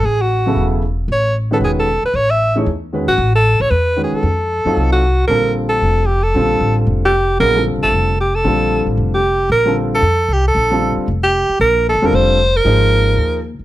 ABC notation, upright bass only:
X:1
M:4/4
L:1/8
Q:"Swing" 1/4=228
K:Alyd
V:1 name="Upright bass" clef=bass
A,,,4 E,,,4 | A,,,4 E,,,3 z | A,,,4 E,,3 G,,, | A,,,3 _B,,, E,,3 z |
=F,,3 _G,, =C,,4 | [K:Bb] B,,,4 F,,,4 | B,,,2 A,,,2 F,,,4 | B,,,2- (3B,,, C,, A,,, F,,,4 |
B,,,3 A,,, F,,,4 | B,,,4 F,,2 C,,2 | B,,,3 z F,,,3 z | B,,,2- (3B,,, D,, F,, F,,,4 |
_A,,,4 E,,3 z |]